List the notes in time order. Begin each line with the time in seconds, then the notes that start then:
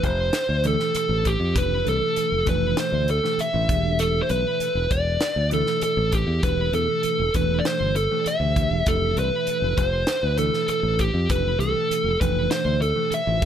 0.03 F1 C5, kick, closed hi-hat
0.33 snare, closed hi-hat
0.49 D2
0.63 B2 E3 A3 D4 G4 A4, closed hi-hat
0.80 snare
0.95 A4, muted fingered electric bass stroke, closed hi-hat
1.09 A1
1.25 G4, kick, closed hi-hat
1.40 F2
1.54 F1 B2 E3 A3 D4 G4, kick, closed hi-hat
1.58 B4
1.85 C2 B2 E3 A3 D4 A4, closed hi-hat
1.89 A4
2.16 muted fingered electric bass stroke, closed hi-hat
2.32 F1
2.45 F1 B2 E3 A3 D4 A4 B4, kick, closed hi-hat
2.77 C5, snare, closed hi-hat
2.92 D2
3.08 A4, closed hi-hat
3.23 B2 E3 A3 D4 G4, snare
3.38 E5, muted fingered electric bass stroke, closed hi-hat
3.53 A1 B2 E3 A3 D4 E4
3.69 E1 B2 E3 A3 D4 G4, kick, closed hi-hat
3.99 A4, closed hi-hat
4.23 C5
4.29 B1 B4, closed hi-hat
4.60 muted fingered electric bass stroke, closed hi-hat
4.75 E1
4.91 E1 D5, kick, closed hi-hat
5.21 snare, closed hi-hat
5.36 D2
5.51 B2 E3 A3 D4 E4 A4, closed hi-hat
5.66 snare
5.82 A4, muted fingered electric bass stroke, closed hi-hat
5.97 A1
6.12 G4, kick, closed hi-hat
6.27 E2
6.43 E1 B2 E3 A3 D4 G4 B4, kick, closed hi-hat
6.72 E2 B2 E3 A3 D4 A4, closed hi-hat
7.03 muted fingered electric bass stroke, closed hi-hat
7.19 E1
7.34 E1 B2 E3 A3 D4 A4 B4, kick, closed hi-hat
7.59 D5
7.65 C5, snare, closed hi-hat
7.80 G1
7.96 A4, closed hi-hat
8.11 B2 E3 A3 D4 G4
8.26 E5, muted fingered electric bass stroke, closed hi-hat
8.40 D2 B2 E3 A3 D4 G4
8.56 B2 E3 A3 D4 G4, kick, closed hi-hat
8.71 E1
8.86 F1 B2 E3 A3 D4 G4 A4, kick, closed hi-hat
9.16 C2 B4, closed hi-hat
9.47 muted fingered electric bass stroke, closed hi-hat
9.62 F1
9.78 F1 C5, kick, closed hi-hat
10.07 snare, closed hi-hat
10.22 D2 B4
10.37 B2 E3 A3 D4 E4 A4, closed hi-hat
10.54 snare
10.68 A4, muted fingered electric bass stroke, closed hi-hat
10.83 A1
10.99 G4, kick, closed hi-hat
11.14 F2
11.29 F1 B2 E3 A3 D4 G4 B4, kick, closed hi-hat
11.59 C2 B2 E3 A3 D4 G4 A4, closed hi-hat
11.90 muted fingered electric bass stroke, closed hi-hat
12.04 F1
12.21 F1 B2 E3 A3 D4 A4 B4, kick, closed hi-hat
12.51 C5, snare, closed hi-hat
12.65 D2
12.82 A4, closed hi-hat
12.95 B2 E3 A3 D4 G4
13.11 E5, muted fingered electric bass stroke, closed hi-hat
13.26 A1 B2 E3 A3 D4 F4
13.41 E1 B2 E3 A3 D4 G4